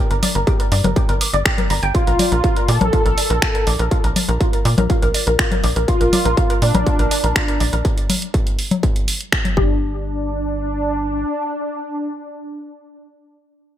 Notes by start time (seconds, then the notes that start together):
Already playing: D4
0.11 G1 A#4 A#5, closed hi-hat
0.23 D5 D6, open hi-hat, low conga
0.35 G1 A#4 A#5, closed hi-hat
0.47 G4 G5, kick, closed hi-hat
0.60 A#4 A#5, closed hi-hat
0.72 G2 D5 D6, open hi-hat
0.84 G1 A#4 A#5, closed hi-hat, low conga
0.96 G4 G5, kick, closed hi-hat
1.09 G1 A#4 A#5, closed hi-hat
1.21 D6, open hi-hat
1.33 G1 D5 D6, closed hi-hat
1.45 G4 G5, finger snap, kick, closed hi-hat
1.58 A#4 A#5, closed hi-hat, low conga
1.70 G1 A#5 A#6, open hi-hat
1.83 G1 G5 G6, closed hi-hat
1.95 F4 F5, kick, closed hi-hat
2.07 A#1 A#4 A#5, closed hi-hat
2.19 D5 D6, open hi-hat, low conga
2.32 A#1 A#4 A#5, closed hi-hat
2.44 F4 F5, kick, closed hi-hat
2.56 A#4 A#5, closed hi-hat
2.68 A#2 A4 D5 D6, open hi-hat
2.81 A#1 A#4 A#5, closed hi-hat, low conga
2.93 F4 F5, kick, closed hi-hat
3.06 A#1 A#4 A#5, closed hi-hat
3.18 D5 D6, open hi-hat
3.30 A#1 A#4 A#5, closed hi-hat
3.42 F4 F5, finger snap, kick, closed hi-hat
3.55 A#4 A#5, closed hi-hat
3.67 A#1 D5 D6, open hi-hat
3.79 A#1 A#4 A#5, closed hi-hat
3.91 F4 F5, kick, closed hi-hat
4.04 A#1 A#4 A#5, closed hi-hat
4.16 D5 D6, open hi-hat, low conga
4.29 A#1 A#4 A#5, closed hi-hat
4.41 F4 F5, kick, closed hi-hat
4.53 A#4 A#5, closed hi-hat
4.65 A#2 D5 D6, open hi-hat
4.78 A#1 A#4 A#5, closed hi-hat, low conga
4.90 F4 F5, kick, closed hi-hat
5.02 A#1 A#4 A#5, closed hi-hat
5.14 D5 D6, open hi-hat
5.27 A#1 A#4 A#5, closed hi-hat
5.39 F4 F5, finger snap, kick, closed hi-hat
5.52 A#4 A#5, closed hi-hat, low conga
5.64 A#1 D5 D6, open hi-hat
5.76 A#1 A#4 A#5, closed hi-hat
5.88 F4 F5, kick, closed hi-hat
6.01 A#1 A#4 A#5, closed hi-hat
6.13 D5 D6, open hi-hat, low conga
6.25 A#1 A#4 A#5, closed hi-hat
6.37 F4 F5, kick, closed hi-hat
6.50 A#4 A#5, closed hi-hat
6.62 A#2 D4 D5 D6, open hi-hat
6.75 A#1 A#4 A#5, closed hi-hat, low conga
6.86 F4 F5, kick, closed hi-hat
6.99 A#1 A#4 A#5, closed hi-hat
7.11 D5 D6, open hi-hat
7.24 A#1 A#4 A#5, closed hi-hat
7.36 F4 F5, finger snap, kick, closed hi-hat
7.48 A#4 A#5, closed hi-hat
7.60 A#1 D5 D6, open hi-hat
7.73 A#1 A#4 A#5, closed hi-hat
7.85 kick, closed hi-hat
7.98 closed hi-hat
8.10 open hi-hat, low conga
8.22 closed hi-hat
8.34 kick, closed hi-hat
8.47 closed hi-hat
8.59 open hi-hat
8.71 closed hi-hat, low conga
8.83 kick, closed hi-hat
8.96 closed hi-hat
9.08 open hi-hat
9.21 closed hi-hat
9.32 finger snap, kick, closed hi-hat
9.45 closed hi-hat, low conga
9.57 G1 D4 G4, kick